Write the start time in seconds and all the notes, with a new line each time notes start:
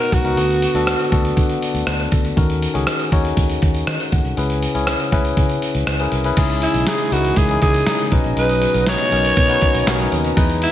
Already playing: B2 A#4 C#5 A#5
0.00 B3 D#4 F#4 A#4, closed hi-hat
0.12 B1 F#4, kick, closed hi-hat
0.24 C#2 B3 D#4 F#4 A#4, closed hi-hat
0.37 D2 D3 B3 D4 F#4 A4, closed hi-hat
0.50 closed hi-hat
0.62 closed hi-hat
0.74 D2 B3 D4 F#4 A4, closed hi-hat
0.87 cross-stick, closed hi-hat
1.00 closed hi-hat
1.12 D2 B3 D4 F#4 A4, kick, closed hi-hat
1.25 closed hi-hat
1.37 D3, kick, closed hi-hat
1.49 closed hi-hat
1.62 D5, closed hi-hat
1.74 D2, closed hi-hat
1.87 D2 B4, cross-stick, closed hi-hat
2.00 closed hi-hat
2.12 D2 A4, kick, closed hi-hat
2.25 closed hi-hat
2.36 D#2 D#3 C#4 D#4 F#4 A#4, kick, closed hi-hat
2.50 closed hi-hat
2.62 closed hi-hat
2.74 C#2 C#4 D#4 F#4 G#4, closed hi-hat
2.87 cross-stick, closed hi-hat
3.00 closed hi-hat
3.12 D#2 C#4 D#4 F#4 C#5, kick, closed hi-hat
3.25 closed hi-hat
3.37 D#2, kick, closed hi-hat
3.49 closed hi-hat
3.62 D#2, kick, closed hi-hat
3.75 closed hi-hat
3.87 D#3 D#5, cross-stick, closed hi-hat
4.00 closed hi-hat
4.12 D#2 F#5, kick, closed hi-hat
4.24 C2, closed hi-hat
4.37 C#2 C#3 C#4 E4 G#4 B4, closed hi-hat
4.50 closed hi-hat
4.62 closed hi-hat
4.75 C#2 C#4 E4 G#4 C#5, closed hi-hat
4.87 cross-stick, closed hi-hat
5.00 closed hi-hat
5.12 C#2 C#4 E4 G#4 B4, kick, closed hi-hat
5.25 closed hi-hat
5.37 C#3, kick, closed hi-hat
5.49 closed hi-hat
5.62 closed hi-hat
5.75 C#2, closed hi-hat
5.87 C#2, cross-stick, closed hi-hat
6.00 C#4 E4 G#4 A#4, closed hi-hat
6.12 C2, closed hi-hat
6.24 C#4 E4 G#4 B4, closed hi-hat
6.37 C#2 C#3 E3 G#3 C#4 D#4 E4 G#4 D#5, kick, closed hi-hat, crash, tambourine
6.50 closed hi-hat
6.62 E4, closed hi-hat, tambourine
6.74 B1, closed hi-hat
6.87 C#4 D#4 E4 G#4, snare, closed hi-hat, tambourine
7.00 closed hi-hat, tambourine
7.12 C#2 C#4 D#4 E4 F#4 A#4, closed hi-hat, tambourine
7.25 closed hi-hat, tambourine
7.36 C#2 G#4, kick, closed hi-hat, tambourine
7.49 C#4 D#4 E4 G#4, closed hi-hat
7.62 C#2 G#4, kick, closed hi-hat, tambourine
7.74 closed hi-hat, tambourine
7.87 C#3 C#4 D#4 E4 G#4, snare, closed hi-hat, tambourine
8.00 closed hi-hat
8.12 B1 B2 F#3 B3 C#4 D#4 F#4 B4, kick, closed hi-hat
8.24 A#1, closed hi-hat, tambourine
8.37 B1 B4, closed hi-hat, tambourine
8.49 closed hi-hat
8.62 closed hi-hat, tambourine
8.74 B1, closed hi-hat, tambourine
8.87 C#4 D#4 F#4 B4 C#5, snare, closed hi-hat, tambourine
9.00 closed hi-hat, tambourine
9.12 B1 C#4 D#4 F#4 A#4, closed hi-hat, tambourine
9.25 closed hi-hat, tambourine
9.37 B2, kick, closed hi-hat, tambourine
9.49 C#4 D#4 F#4 B4, closed hi-hat
9.62 kick, closed hi-hat, tambourine
9.74 B1, closed hi-hat
9.86 B1 C#4 D#4 F#4 A#4, snare, closed hi-hat, tambourine
10.00 closed hi-hat
10.12 D#2, closed hi-hat
10.24 closed hi-hat
10.37 E2 E3 G#3 D#4 E4 G#4 B4, kick, closed hi-hat, tambourine
10.50 closed hi-hat
10.62 E4, closed hi-hat, tambourine